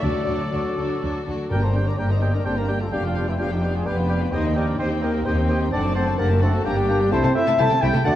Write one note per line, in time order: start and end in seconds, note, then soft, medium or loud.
0.01 0.11 D2 medium
0.01 0.73 D3 medium
0.01 0.11 D3 soft
0.01 1.23 F#3 soft
0.01 0.25 F#3 soft
0.01 0.26 D4 medium
0.01 0.26 F#4 soft
0.01 1.27 F#4 medium
0.01 1.24 A4 medium
0.01 0.26 A4 soft
0.01 1.01 D5 medium
0.01 1.26 D6 medium
0.27 0.36 D2 soft
0.27 0.35 D3 soft
0.27 0.51 F#3 soft
0.27 0.51 D4 soft
0.27 0.51 F#4 soft
0.27 0.51 A4 soft
0.52 0.61 D2 soft
0.52 0.61 D3 medium
0.52 0.76 F#3 soft
0.52 0.76 D4 soft
0.52 0.76 F#4 soft
0.52 0.76 A4 soft
0.77 0.86 D2 soft
0.77 0.85 D3 soft
0.77 1.00 F#3 soft
0.77 1.00 D4 soft
0.77 1.00 F#4 soft
0.77 1.00 A4 soft
1.01 1.10 D2 medium
1.01 1.10 D3 soft
1.01 1.25 F#3 soft
1.01 1.25 D4 soft
1.01 1.26 F#4 soft
1.01 1.26 A4 soft
1.26 1.35 D2 soft
1.26 1.34 D3 soft
1.26 1.50 F#3 soft
1.26 1.50 D4 soft
1.26 1.51 F#4 soft
1.26 1.51 A4 soft
1.50 1.93 G1 medium
1.50 2.18 G2 medium
1.50 1.93 G2 soft
1.50 1.62 A#3 soft
1.50 1.63 A#3 medium
1.50 1.61 D4 soft
1.50 1.61 G4 soft
1.50 1.62 G4 soft
1.50 1.57 G4 medium
1.50 1.62 A#4 medium
1.50 1.62 G5 soft
1.62 1.87 C4 medium
1.62 1.75 D4 soft
1.62 1.69 A4 soft
1.62 1.75 A#4 soft
1.62 1.87 C5 medium
1.62 1.75 A#5 soft
1.74 1.87 A#3 soft
1.74 1.85 D4 soft
1.74 1.87 G4 soft
1.74 1.86 G4 soft
1.74 1.86 G5 soft
1.86 1.99 D4 soft
1.86 1.99 D4 medium
1.86 1.92 A#4 soft
1.86 1.99 A#4 soft
1.86 1.99 D5 medium
1.86 1.98 A#5 soft
1.98 2.40 G1 medium
1.98 2.40 G2 medium
1.98 2.10 A#3 soft
1.98 2.11 A#3 medium
1.98 2.09 D4 soft
1.98 2.10 G4 soft
1.98 2.13 G4 medium
1.98 2.10 A#4 medium
1.98 2.09 G5 soft
1.98 2.10 G5 soft
2.10 2.22 D4 soft
2.10 2.21 D#4 medium
2.10 2.22 A#4 soft
2.10 2.36 C5 soft
2.10 2.34 D#5 medium
2.10 2.22 A#5 soft
2.21 2.34 A#3 soft
2.21 2.32 D4 soft
2.21 2.34 G4 soft
2.21 2.33 G4 soft
2.21 2.34 G5 soft
2.21 2.33 G5 soft
2.34 2.39 D4 soft
2.34 2.46 D4 soft
2.34 2.46 A#4 soft
2.34 2.47 A#4 soft
2.34 2.46 D5 medium
2.34 2.46 A#5 soft
2.45 2.87 G1 medium
2.45 2.87 G2 soft
2.45 2.57 A#3 soft
2.45 2.57 C4 medium
2.45 2.56 D4 soft
2.45 2.57 G4 soft
2.45 2.57 A4 medium
2.45 2.57 C5 medium
2.45 2.56 G5 soft
2.45 2.57 G5 soft
2.56 2.80 A#3 medium
2.56 2.69 D4 soft
2.56 2.81 G4 medium
2.56 2.81 A#4 medium
2.56 2.70 A#4 soft
2.56 2.69 A#5 soft
2.68 2.81 A#3 soft
2.68 2.79 D4 soft
2.68 2.81 G4 soft
2.68 2.80 G4 soft
2.68 2.79 G5 soft
2.68 2.81 G5 soft
2.79 2.85 A3 medium
2.79 2.93 D4 soft
2.79 2.87 F4 medium
2.79 2.93 A4 medium
2.79 2.93 A#4 soft
2.79 2.93 A#5 soft
2.91 3.34 F1 medium
2.91 3.34 F2 medium
2.91 2.97 G3 medium
2.91 3.03 B3 soft
2.91 2.98 D4 medium
2.91 3.03 D4 medium
2.91 3.04 G4 medium
2.91 3.04 G4 soft
2.91 3.04 F5 soft
2.91 3.03 G5 medium
3.03 3.27 F3 soft
3.03 3.30 D4 soft
3.03 3.16 D4 soft
3.03 3.16 F4 soft
3.03 3.28 F4 medium
3.03 3.16 G5 soft
3.15 3.28 B3 soft
3.15 3.27 D4 soft
3.15 3.27 G4 soft
3.15 3.28 G4 soft
3.15 3.27 F5 soft
3.15 3.26 G5 soft
3.27 3.39 E3 medium
3.27 3.40 C4 soft
3.27 3.39 D4 soft
3.27 3.34 E4 medium
3.27 3.40 F4 soft
3.27 3.40 G5 soft
3.37 3.81 F1 medium
3.37 3.81 F2 medium
3.37 3.50 F3 medium
3.37 3.50 B3 soft
3.37 3.50 D4 medium
3.37 3.50 D4 soft
3.37 3.45 F4 medium
3.37 3.51 G4 soft
3.37 3.51 F5 soft
3.37 3.49 G5 soft
3.50 3.61 G3 soft
3.50 3.63 D4 soft
3.50 3.76 D#4 medium
3.50 3.64 F4 soft
3.50 3.63 G4 medium
3.50 3.63 G5 soft
3.62 3.74 B3 medium
3.62 3.73 D4 soft
3.62 3.75 G4 soft
3.62 3.74 G4 soft
3.62 3.75 F5 soft
3.62 3.73 G5 soft
3.73 3.85 G#3 medium
3.73 3.86 D4 soft
3.73 3.86 F4 soft
3.73 3.88 F4 medium
3.73 3.87 G#4 medium
3.73 3.87 G5 soft
3.85 4.28 F1 medium
3.85 4.28 F2 medium
3.85 4.32 B3 medium
3.85 3.97 B3 soft
3.85 3.96 D4 soft
3.85 3.97 G4 soft
3.85 4.32 G4 medium
3.85 3.97 G4 soft
3.85 4.33 B4 medium
3.85 3.97 F5 soft
3.85 3.97 G5 soft
3.97 4.09 D4 soft
3.97 4.09 F4 soft
3.97 4.10 G5 soft
4.08 4.21 B3 soft
4.08 4.20 D4 soft
4.08 4.21 G4 soft
4.08 4.20 G4 soft
4.08 4.22 F5 soft
4.08 4.20 G5 soft
4.20 4.32 D4 soft
4.20 4.33 F4 soft
4.20 4.33 G5 soft
4.32 4.74 D#2 medium
4.32 4.43 C4 soft
4.32 4.55 D#4 medium
4.32 4.44 D#4 soft
4.32 4.44 G4 soft
4.32 4.44 G4 medium
4.32 4.55 C5 medium
4.32 4.44 D#5 medium
4.32 4.56 D#5 medium
4.32 4.43 G5 medium
4.43 4.56 C4 soft
4.43 4.56 D#4 soft
4.43 4.57 G5 soft
4.55 4.66 C4 soft
4.55 4.79 D4 medium
4.55 4.68 D#4 soft
4.55 4.67 G4 soft
4.55 4.78 A#4 medium
4.55 4.79 D5 medium
4.55 4.68 D#5 soft
4.55 4.66 G5 soft
4.67 4.79 C4 soft
4.67 4.79 D#4 soft
4.67 4.80 G5 soft
4.79 5.20 D#2 medium
4.79 4.90 C4 soft
4.79 5.02 C4 medium
4.79 4.90 D#4 soft
4.79 4.85 G4 medium
4.79 4.90 G4 soft
4.79 4.90 C5 medium
4.79 4.90 D#5 medium
4.79 4.89 G5 soft
4.91 5.03 C4 soft
4.91 5.02 D#4 soft
4.91 5.03 G5 soft
5.02 5.26 A#3 medium
5.02 5.12 C4 soft
5.02 5.14 D#4 soft
5.02 5.25 G4 medium
5.02 5.14 G4 soft
5.02 5.13 G4 medium
5.02 5.25 A#4 medium
5.02 5.14 D#5 soft
5.02 5.13 G5 soft
5.13 5.26 C4 soft
5.13 5.25 D#4 medium
5.13 5.26 G5 soft
5.25 5.67 D#2 medium
5.25 5.35 C4 soft
5.25 5.72 C4 medium
5.25 5.37 D#4 soft
5.25 5.71 G4 medium
5.25 5.36 G4 soft
5.25 5.72 C5 medium
5.25 5.37 D#5 soft
5.25 5.36 G5 medium
5.36 5.49 C4 soft
5.36 5.48 D#4 soft
5.36 5.49 G5 soft
5.47 5.59 C4 soft
5.47 5.61 D#4 medium
5.47 5.60 G4 soft
5.47 5.61 G4 medium
5.47 5.61 D#5 soft
5.47 5.59 G5 medium
5.60 5.72 C4 soft
5.60 5.72 D#4 soft
5.60 5.72 G5 medium
5.72 6.13 F#1 medium
5.72 6.13 F#2 medium
5.72 5.83 A3 soft
5.72 5.82 C4 medium
5.72 5.83 D4 medium
5.72 5.96 D4 medium
5.72 5.95 A4 medium
5.72 5.95 D5 medium
5.72 5.83 F#5 medium
5.72 5.83 A5 medium
5.83 5.95 C4 soft
5.83 5.95 F#4 soft
5.83 5.95 A5 soft
5.95 6.07 A3 medium
5.95 6.06 C4 soft
5.95 6.19 C4 medium
5.95 6.05 D4 medium
5.95 6.07 D4 medium
5.95 6.19 A4 medium
5.95 6.06 C5 medium
5.95 6.07 F#5 soft
5.95 6.06 A5 medium
6.07 6.18 C4 soft
6.07 6.19 F#4 soft
6.07 6.19 A5 soft
6.18 6.60 F#1 medium
6.18 6.60 F#2 medium
6.18 6.29 A3 soft
6.18 6.41 A#3 medium
6.18 6.29 C4 medium
6.18 6.29 D4 soft
6.18 6.30 D4 medium
6.18 6.44 G4 medium
6.18 6.42 A#4 medium
6.18 6.29 F#5 medium
6.18 6.29 A5 soft
6.30 6.42 C4 soft
6.30 6.42 F#4 soft
6.30 6.42 A5 soft
6.41 6.53 A3 medium
6.41 6.65 A3 medium
6.41 6.53 C4 medium
6.41 6.52 D4 medium
6.41 6.54 D4 medium
6.41 6.67 F#4 medium
6.41 6.65 A4 medium
6.41 6.53 F#5 soft
6.41 6.52 A5 medium
6.53 6.65 C4 medium
6.53 6.65 F#4 medium
6.53 6.65 A5 medium
6.65 7.06 G1 medium
6.65 7.07 G2 medium
6.65 7.11 G3 medium
6.65 6.76 G3 medium
6.65 6.76 A#3 medium
6.65 6.76 D4 medium
6.65 7.14 D4 medium
6.65 7.11 G4 medium
6.65 6.75 G5 medium
6.65 6.76 A#5 soft
6.76 6.88 A#3 medium
6.76 6.89 G4 soft
6.76 6.89 G5 medium
6.88 7.00 G3 medium
6.88 6.99 A#3 medium
6.88 7.00 D4 medium
6.88 6.99 D4 medium
6.88 6.99 G5 medium
6.88 7.00 A#5 medium
6.99 7.11 A#3 medium
6.99 7.13 G4 medium
6.99 7.12 G5 medium
7.11 7.17 C2 medium
7.11 7.17 C3 medium
7.11 7.16 A3 medium
7.11 7.22 A3 medium
7.11 7.35 C4 medium
7.11 7.23 E4 medium
7.11 7.17 E4 medium
7.11 7.34 A4 medium
7.11 7.35 C5 loud
7.11 7.23 G5 medium
7.11 7.16 A5 medium
7.23 7.28 C3 medium
7.23 7.28 A3 medium
7.23 7.28 E4 medium
7.23 7.28 A5 medium
7.35 7.46 A3 medium
7.35 7.45 E4 medium
7.35 7.46 E4 medium
7.35 7.41 C5 medium
7.35 7.58 E5 loud
7.35 7.46 G5 medium
7.46 7.52 C3 medium
7.46 7.51 A3 medium
7.46 7.52 E4 medium
7.46 7.52 A5 medium
7.58 7.63 C2 medium
7.58 7.64 C3 medium
7.58 7.63 A3 medium
7.58 7.70 A3 medium
7.58 7.68 E4 medium
7.58 7.63 E4 medium
7.58 7.82 A4 medium
7.58 7.64 E5 medium
7.58 7.69 G5 medium
7.58 7.63 A5 medium
7.58 7.82 A5 loud
7.70 7.75 C3 medium
7.70 7.74 A3 medium
7.70 7.76 C4 medium
7.70 7.75 G5 soft
7.81 7.87 C2 medium
7.81 7.86 C3 medium
7.81 7.86 A3 medium
7.81 7.93 A3 medium
7.81 7.93 E4 medium
7.81 7.88 E4 medium
7.81 8.05 G4 medium
7.81 7.87 E5 medium
7.81 7.92 G5 medium
7.81 8.06 G5 loud
7.81 7.86 A5 medium
7.93 7.98 C3 medium
7.93 7.97 A3 medium
7.93 8.00 E4 medium
7.93 7.98 A5 medium
8.04 8.10 D2 medium
8.04 8.10 D3 medium
8.04 8.09 A3 medium
8.04 8.15 A3 medium
8.04 8.11 A3 medium
8.04 8.15 D4 medium
8.04 8.15 F#4 medium
8.04 8.12 D5 loud
8.04 8.10 F#5 medium
8.04 8.15 F#5 loud
8.04 8.15 A5 medium